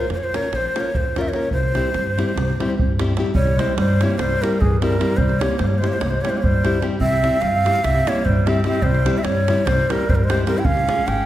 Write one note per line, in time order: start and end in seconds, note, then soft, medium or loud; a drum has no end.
0.00 0.13 C5 medium
0.10 0.36 F2 medium
0.10 0.19 C5 medium
0.10 davul high soft
0.18 0.25 C#5 medium
0.24 0.37 C5 loud
0.34 0.47 A#3 soft
0.34 0.48 C#4 soft
0.34 0.48 F4 soft
0.34 0.48 A#4 medium
0.34 0.57 C#5 medium
0.34 davul high medium
0.44 davul high soft
0.52 0.66 A#1 medium
0.52 0.82 C5 medium
0.52 davul high medium
0.76 0.89 A#3 medium
0.76 0.90 C#4 soft
0.76 0.90 F4 medium
0.76 0.90 A#4 medium
0.76 davul high medium
0.80 0.97 C#5 medium
0.95 1.29 F2 medium
0.95 1.20 C5 medium
0.95 davul low medium
1.16 1.29 A#3 medium
1.16 1.29 C#4 medium
1.16 1.30 F4 medium
1.16 1.30 A#4 medium
1.16 1.22 C#5 medium
1.16 1.30 E5 medium
1.16 davul high medium
1.25 1.52 C#5 medium
1.25 davul high soft
1.33 1.46 A#3 medium
1.33 1.47 C#4 medium
1.33 1.47 F4 medium
1.33 1.47 A#4 medium
1.33 davul high soft
1.43 davul high soft
1.51 1.78 C2 medium
1.51 2.96 C5 medium
1.51 davul low medium
1.63 davul high soft
1.75 1.89 G3 medium
1.75 1.89 C4 medium
1.75 1.89 E4 medium
1.75 1.89 G4 medium
1.75 davul high soft
1.85 davul high soft
1.94 2.20 G2 loud
1.94 davul high soft
2.07 davul high soft
2.18 2.31 G3 medium
2.18 2.31 C4 medium
2.18 2.31 E4 medium
2.18 2.31 G4 medium
2.18 davul high medium
2.29 davul high soft
2.36 2.50 C2 medium
2.36 davul high medium
2.36 davul low medium
2.50 davul high soft
2.60 2.73 G3 medium
2.60 2.73 C4 medium
2.60 2.74 E4 medium
2.60 2.74 G4 medium
2.60 davul high medium
2.70 davul high soft
2.78 3.12 G2 medium
2.78 davul low medium
2.99 3.12 G3 medium
2.99 3.12 C4 medium
2.99 3.13 E4 medium
2.99 3.13 G4 medium
2.99 davul high medium
3.17 3.30 G3 medium
3.17 3.30 C4 medium
3.17 3.30 E4 medium
3.17 3.31 G4 medium
3.17 davul high medium
3.26 davul high soft
3.34 3.60 C2 medium
3.34 3.59 G3 medium
3.34 3.61 C#5 medium
3.34 davul low loud
3.47 davul high soft
3.58 3.71 G3 medium
3.58 3.76 G#3 medium
3.58 3.72 C4 medium
3.58 3.72 E4 medium
3.58 3.72 G4 medium
3.58 3.78 C5 medium
3.58 davul high medium
3.77 4.02 G2 loud
3.77 4.04 G3 medium
3.77 4.04 C5 medium
3.77 davul high medium
4.01 4.14 G3 medium
4.01 4.24 A#3 medium
4.01 4.15 C4 soft
4.01 4.15 E4 soft
4.01 4.15 G4 medium
4.01 4.19 C#5 medium
4.01 davul high medium
4.10 davul high soft
4.18 4.33 C2 medium
4.18 4.44 C5 medium
4.18 davul high medium
4.22 4.46 G3 medium
4.42 4.56 G3 medium
4.42 4.64 G3 medium
4.42 4.56 C4 medium
4.42 4.56 E4 medium
4.42 4.56 G4 medium
4.42 4.62 A#4 medium
4.42 davul high medium
4.61 4.95 G2 medium
4.61 4.83 E3 medium
4.61 4.80 G#4 medium
4.61 davul low medium
4.81 4.95 G3 medium
4.81 5.18 G3 medium
4.81 4.95 C4 soft
4.81 4.95 E4 medium
4.81 4.95 G4 medium
4.81 5.18 A#4 medium
4.81 davul high medium
4.92 davul high soft
5.00 5.12 G3 medium
5.00 5.12 C4 medium
5.00 5.13 E4 medium
5.00 5.13 G4 medium
5.00 davul high medium
5.10 davul high soft
5.17 5.43 C2 medium
5.17 5.45 G3 medium
5.17 5.41 C5 medium
5.17 davul low loud
5.29 davul high soft
5.40 5.54 G3 medium
5.40 5.65 A#3 medium
5.40 5.54 C4 medium
5.40 5.55 E4 medium
5.40 5.55 G4 medium
5.40 5.60 C#5 medium
5.40 davul high medium
5.58 5.85 G2 loud
5.58 5.68 C5 medium
5.58 davul high medium
5.64 5.75 G3 medium
5.64 5.80 C#5 medium
5.74 5.82 A#3 medium
5.78 5.96 G3 medium
5.78 5.91 G#3 medium
5.78 5.88 C5 medium
5.83 5.96 C4 soft
5.83 5.97 E4 medium
5.83 5.97 G4 medium
5.83 davul high medium
5.87 5.98 A#3 medium
5.87 5.95 C#5 medium
5.92 6.02 C5 medium
5.92 davul high soft
5.96 6.06 G#3 medium
6.01 6.16 C2 medium
6.01 6.12 A#3 medium
6.01 6.12 C#5 medium
6.01 davul high medium
6.10 6.23 G#3 medium
6.10 6.23 C5 medium
6.21 6.38 G3 medium
6.21 6.31 A#3 medium
6.21 6.38 C4 medium
6.21 6.31 C#5 medium
6.21 davul high medium
6.25 6.38 E4 soft
6.25 6.39 G4 medium
6.29 6.38 G#3 medium
6.29 6.39 C5 medium
6.37 6.47 A#3 medium
6.37 6.44 C#5 medium
6.43 6.78 G2 medium
6.43 6.84 G3 medium
6.43 6.82 C5 medium
6.43 davul low medium
6.64 6.77 G3 medium
6.64 6.77 C4 medium
6.64 6.78 E4 medium
6.64 6.78 G4 medium
6.64 davul high medium
6.74 davul high soft
6.82 6.95 G3 medium
6.82 6.95 C4 medium
6.82 6.95 E4 medium
6.82 6.96 G4 medium
6.82 davul high medium
6.92 davul high soft
6.99 7.26 C2 medium
6.99 7.42 C4 medium
6.99 7.43 E5 loud
6.99 davul low medium
7.12 davul high soft
7.23 7.37 G3 medium
7.23 7.37 C4 medium
7.23 7.37 E4 medium
7.23 7.37 G4 medium
7.23 davul high medium
7.41 7.68 G2 medium
7.41 7.84 C4 medium
7.41 7.86 F5 loud
7.41 davul high soft
7.65 7.79 G3 soft
7.65 7.79 C4 medium
7.65 7.79 E4 soft
7.65 7.80 G4 medium
7.65 davul high medium
7.75 davul high soft
7.84 7.99 C2 medium
7.84 8.11 C4 medium
7.84 8.10 E5 medium
7.84 davul high medium
8.07 8.20 G3 medium
8.07 8.27 A#3 medium
8.07 8.21 C4 medium
8.07 8.21 E4 medium
8.07 8.21 G4 medium
8.07 8.27 C#5 medium
8.07 davul high medium
8.25 8.60 G2 loud
8.25 8.51 G3 medium
8.25 8.48 C5 medium
8.25 davul low medium
8.46 8.59 G3 medium
8.46 8.60 C4 medium
8.46 8.66 C4 medium
8.46 8.61 E4 medium
8.46 8.61 G4 medium
8.46 8.64 E5 medium
8.46 davul high medium
8.56 davul high soft
8.64 8.78 G3 medium
8.64 8.78 C4 medium
8.64 8.87 C4 medium
8.64 8.78 E4 medium
8.64 8.78 G4 medium
8.64 8.84 E5 medium
8.64 davul high medium
8.74 davul high soft
8.82 9.08 C2 loud
8.82 9.21 G3 medium
8.82 9.19 C5 loud
8.82 davul low medium
8.95 davul high soft
9.06 9.19 G3 medium
9.06 9.19 C4 medium
9.06 9.20 E4 medium
9.06 9.20 G4 medium
9.06 davul high medium
9.15 9.26 E5 medium
9.15 davul high soft
9.20 9.30 C4 medium
9.24 9.50 G2 medium
9.24 9.67 C#5 medium
9.24 davul high medium
9.29 9.69 G3 medium
9.48 9.62 G3 medium
9.48 9.62 C4 medium
9.48 9.62 E4 medium
9.48 9.63 G4 medium
9.48 davul high medium
9.58 davul high soft
9.66 9.81 C2 medium
9.66 9.90 G3 medium
9.66 9.92 C5 medium
9.66 davul high medium
9.66 davul low medium
9.79 davul high soft
9.90 10.03 G3 medium
9.90 10.10 G3 medium
9.90 10.04 C4 soft
9.90 10.04 E4 soft
9.90 10.05 G4 medium
9.90 10.11 A#4 medium
9.90 davul high medium
10.00 davul high soft
10.09 10.43 G2 medium
10.09 10.16 G3 medium
10.09 10.17 C5 medium
10.09 davul low medium
10.15 10.26 G3 medium
10.15 10.25 A#4 medium
10.24 10.48 G#3 medium
10.24 10.46 C5 loud
10.30 10.43 G3 medium
10.30 10.43 C4 medium
10.30 10.44 E4 medium
10.30 10.44 G4 medium
10.30 davul high medium
10.39 davul high soft
10.46 10.60 G3 medium
10.46 10.60 C4 soft
10.46 10.61 E4 medium
10.46 10.61 G4 medium
10.46 10.60 A#4 medium
10.46 davul high medium
10.57 10.66 E4 medium
10.57 10.67 G5 medium
10.57 davul high soft
10.64 10.91 C#2 medium
10.64 11.08 C#4 medium
10.64 11.09 F5 loud
10.64 davul low loud
10.77 davul high soft
10.88 11.01 G#3 medium
10.88 11.02 C#4 soft
10.88 11.02 F4 medium
10.88 11.02 G#4 medium
10.88 davul high medium
11.07 11.26 G#1 medium
11.07 11.26 C#4 medium
11.07 11.26 G5 medium
11.07 davul high medium